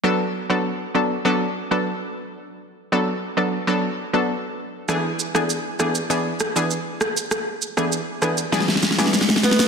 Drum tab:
SH |--------------------------------|--------------------------------|x---x-x-x---x-x-x---x-x-x---x-x-|x---x-x-x---x-x-x---x-x-x---x-x-|
SD |--------------------------------|--------------------------------|r-----r-----r-------r-------r---|r-----r-----r---ooooooooooooooo-|